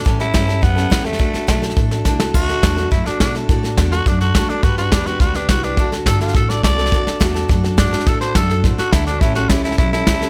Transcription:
<<
  \new Staff \with { instrumentName = "Tenor saxophone" } { \time 4/4 \key d \major \tempo 4 = 210 r8 e'4. b4. a8~ | a4 a8 r2 r8 | fis'2 e'8 d'8 d'8 r8 | r4. fis'8 d'8 fis'8 fis'8 d'8 |
fis'8 fis'8 d'8 fis'8 fis'8 d'8 fis'8 d'8~ | d'8 r8 a'8 f'8 a'8 d''8 d''4~ | d''4 r2 d'4 | a'8 c''8 a'4 r8 fis'8 e'8 d'8 |
e'8 fis'8 e'8 e'8 e'8 e'4. | }
  \new Staff \with { instrumentName = "Steel-string acoustic guitar" } { \time 4/4 \key d \major <a, e g cis' g' a'>8 <g cis' g' a'>8 <a, e g cis' g' a'>8 <g cis' g' a'>8 <g cis' g' a'>8 <g cis' g' a'>8 <a, e g cis' g' a'>8 <g cis' g' a'>8 | <d a d' fis' a'>8 <d' fis' a'>8 <d a d' fis' a'>8 <d' fis' a'>8 <a d' fis' a'>8 <d' fis' a'>8 <d a d' fis' a'>8 <d' fis' a'>8 | <d a d' fis' a'>8 <d' fis' a'>8 <d a d' fis' a'>8 <d' fis' a'>8 <a d' fis' a'>8 <d' fis' a'>8 <d a d' fis' a'>8 <d' fis' a'>8 | <d a d' fis' a'>8 <d' fis' a'>8 <d a d' fis' a'>8 <d' fis' a'>8 <a d' fis' a'>8 <d' fis' a'>8 <d a d' fis' a'>8 <d' fis' a'>8 |
<g d' g' b'>8 <d' g' b'>8 <g d' g' b'>8 <d' g' b'>8 <g d' g' b'>8 <d' g' b'>8 <g d' g' b'>8 <d' g' b'>8 | <d a d' fis' a'>8 <d' fis' a'>8 <d a d' fis' a'>8 <d' fis' a'>8 <a d' fis' a'>8 <d' fis' a'>8 <d a d' fis' a'>8 <d' fis' a'>8 | <d a d' fis' a'>8 <d' fis' a'>8 <d a d' fis' a'>8 <d' fis' a'>8 <a d' fis' a'>8 <d' fis' a'>8 <d a d' fis' a'>8 <d' fis' a'>8 | <d a d' fis' a'>8 <d' fis' a'>8 <d a d' fis' a'>8 <d' fis' a'>8 <a d' fis' a'>8 <d' fis' a'>8 <d a d' fis' a'>8 <d' fis' a'>8 |
<a, e g cis' g' a'>8 <g cis' g' a'>8 <a, e g cis' g' a'>8 <g cis' g' a'>8 <g cis' g' a'>8 <g cis' g' a'>8 <a, e g cis' g' a'>8 <g cis' g' a'>8 | }
  \new Staff \with { instrumentName = "Upright bass" } { \clef bass \time 4/4 \key d \major a,4 g,4 fis,4 e,4 | d,8 r8 b,,4 a,,4 c,4 | d,4 e,4 fis,8 r8 b,4 | a,4 e,4 fis,4 d,8 r8 |
g,4 e,4 d,4 c,4 | d,4 g,,4 a,,4 c,4 | d,8 r8 e,4 fis,4 g,8 r8 | a,4 fis,4 a,8 r8 d,4 |
a,,4 cis,4 b,,4 cis,4 | }
  \new DrumStaff \with { instrumentName = "Drums" } \drummode { \time 4/4 <bd sn>8 sn8 <hhp bd sn>8 sn8 <bd sn>8 sn8 <hhp bd sn>8 sn16 sn16 | <bd sn>8 sn8 <hhp bd sn>8 sn16 sn16 <bd sn>8 sn8 <hhp bd sn>8 sn8 | <cymc bd sn>8 sn8 <hhp bd sn>8 sn8 <bd sn>8 sn8 <hhp bd sn>8 sn8 | <bd sn>8 sn8 <hhp bd sn>8 sn8 <bd sn>8 sn8 <hhp bd sn>8 sn8 |
<bd sn>8 sn8 <hhp bd sn>8 sn8 <bd sn>8 sn8 <hhp bd sn>8 sn8 | <bd sn>8 sn8 <hhp bd sn>8 sn16 sn16 <bd sn>8 sn8 <hhp bd sn>8 sn16 sn16 | <bd sn>8 sn8 <hhp bd sn>8 sn8 <bd sn>8 sn8 <hhp bd sn>8 sn16 sn16 | <bd sn>8 sn8 <hhp bd sn>8 sn8 <bd sn>8 sn8 <hhp bd sn>8 sn8 |
<bd sn>8 sn8 <hhp bd sn>8 sn16 sn16 <bd sn>8 sn8 <hhp bd sn>8 sn8 | }
>>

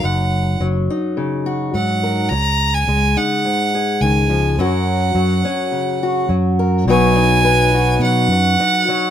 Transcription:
<<
  \new Staff \with { instrumentName = "Fiddle" } { \time 4/4 \key fis \major \tempo 4 = 105 fis''4 r2 fis''4 | ais''8. gis''8. fis''4. gis''4 | fis''2. r4 | gis''2 fis''2 | }
  \new Staff \with { instrumentName = "Steel-string acoustic guitar" } { \time 4/4 \key fis \major << { r4. dis'4 fis'4 ais'8 | r4. dis'4 gis'4. | <fis cis' fis' ais'>4. cis'4 fis'4 ais'8 | <fis dis' fis' b'>8 dis'8 b'8 fis'4 fis'8 dis'4 | } \\ { <fis, fis>4 fis4 cis4 fis4 | cis4 gis4 gis,4 dis8 eis8 | fis,4 fis4 cis4 fis4 | b,2 fis4. fis8 | } >> }
  \new Staff \with { instrumentName = "Fingered electric bass" } { \clef bass \time 4/4 \key fis \major fis,,4 fis,,8 r4. gis,4 | cis,4 cis,8 r4. cis,4 | fis,4 fis,8 r4. fis,4 | b,,2 b,8 fis,8 r4 | }
>>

